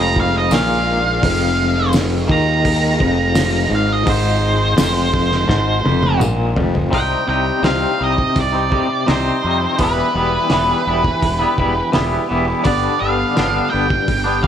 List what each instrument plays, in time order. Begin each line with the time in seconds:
Already playing: fingered electric bass F1, clean electric guitar F2, string machine G#3 D#4 F4
0.02 lead electric guitar A#5
0.16 lead electric guitar F5, kick
0.38 lead electric guitar D#5
0.51 fingered electric bass A#1, clean electric guitar A#2, lead electric guitar F5, snare, open hi-hat, tambourine
1.23 fingered electric bass F1, clean electric guitar F2, kick, open hi-hat
1.93 snare, open hi-hat, tambourine
2.28 fingered electric bass D#2, clean electric guitar D#3, lead electric guitar A#5, kick
2.65 kick, open hi-hat
2.99 fingered electric bass F1, clean electric guitar F2, kick
3.35 snare, open hi-hat, tambourine
3.70 fingered electric bass G#1, clean electric guitar G#2
3.75 lead electric guitar F5
3.92 lead electric guitar D#5
4.06 fingered electric bass G#1, clean electric guitar G#2, lead electric guitar C5, kick, open hi-hat
4.77 fingered electric bass F1, clean electric guitar F2, snare, open hi-hat, tambourine
5.14 kick
5.32 snare
5.48 fingered electric bass G#1, clean electric guitar G#2, kick, snare
5.84 fingered electric bass F1, clean electric guitar F2, high tom
6.03 high tom
6.19 fingered electric bass A#1, clean electric guitar A#2, mid tom, tambourine
6.56 fingered electric bass F1, clean electric guitar F2, floor tom
6.75 floor tom
6.91 fingered electric bass C2, clean electric guitar C3 G3 C4 D#4, string machine C4 D#4 G4, lead electric guitar G5, kick, open hi-hat
7.27 fingered electric bass C2, clean electric guitar C3 G3 C4 D#4, lead electric guitar G5
7.63 fingered electric bass C2, clean electric guitar C3 G3 C4 D#4, lead electric guitar F5, snare, open hi-hat
7.98 fingered electric bass C2, clean electric guitar C3 G3 C4 D#4
8.04 lead electric guitar D#5
8.17 muted clean electric guitar stroke, kick
8.36 fingered electric bass C2, kick, open hi-hat
8.40 lead electric guitar D5
8.52 clean electric guitar G3 C4 D#4
8.70 clean electric guitar C3 G3 C4 D#4, kick
8.90 muted clean electric guitar stroke
9.06 fingered electric bass C2, clean electric guitar C3 G3 C4 D#4, snare, open hi-hat
9.11 lead electric guitar C5
9.43 fingered electric bass F2, clean electric guitar C3 G3 C4 D#4
9.63 clean electric guitar G3 C4
9.78 fingered electric bass E1, clean electric guitar E3 G3 B3 E4, string machine B3 E4, kick, open hi-hat
9.82 lead electric guitar B4
10.14 fingered electric bass E1, clean electric guitar E3 G3 B3 E4
10.49 fingered electric bass E1, clean electric guitar E3 G3 B3 E4, snare, open hi-hat
10.85 fingered electric bass E1, clean electric guitar E3 G3 B3 E4
11.04 muted clean electric guitar stroke, kick
11.22 fingered electric bass E1, kick, open hi-hat
11.39 clean electric guitar G3 B3 E4
11.56 fingered electric bass E1, clean electric guitar E3 G3 B3 E4, kick
11.76 muted clean electric guitar stroke
11.92 fingered electric bass E1, clean electric guitar E3 G3 B3 E4, snare, open hi-hat
12.29 fingered electric bass E1, clean electric guitar E3 G3 B3 E4
12.48 clean electric guitar G3 B3 E4
12.64 fingered electric bass G1, clean electric guitar G2 D3 G3 B3 D4, string machine D3, lead electric guitar D5, kick, open hi-hat
13.00 fingered electric bass G1, clean electric guitar D3 G3 B3 D4, lead electric guitar F5
13.36 fingered electric bass G1, clean electric guitar G2 D3 G3 B3 D4, snare, open hi-hat
13.70 fingered electric bass G1, clean electric guitar D3 G3 B3 D4, lead electric guitar G5
13.88 muted clean electric guitar stroke, kick
14.08 fingered electric bass G1, kick, open hi-hat
14.24 clean electric guitar G3 B3 D4
14.42 clean electric guitar D3 G3 B3, lead electric guitar F5, kick